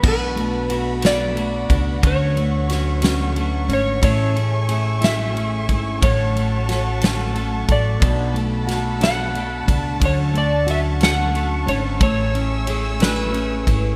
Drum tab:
CC |x-----|------|------|------|
RD |-xxxxx|xxxxxx|xxxxxx|xxxxxx|
SD |---o--|--oo--|---o--|--oo--|
BD |o----o|o-----|o----o|o----o|

CC |------|------|------|
RD |xxxxxx|xxxxxx|xxxxxx|
SD |--oo--|---o--|---o--|
BD |o----o|o-----|o----o|